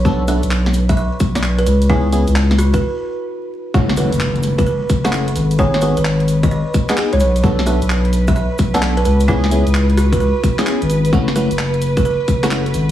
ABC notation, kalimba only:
X:1
M:4/4
L:1/16
Q:"Swing 16ths" 1/4=130
K:F#m
V:1 name="Kalimba"
z2 e3 z2 e e z2 d z B B z | E z4 z F B z8 | z2 B3 z2 B B z2 A z4 | c c B B z3 ^d d z4 c c z |
z2 e3 z2 e e z2 d z B B z | E z4 z F B B z6 z | z2 B3 z2 B B z2 A z4 |]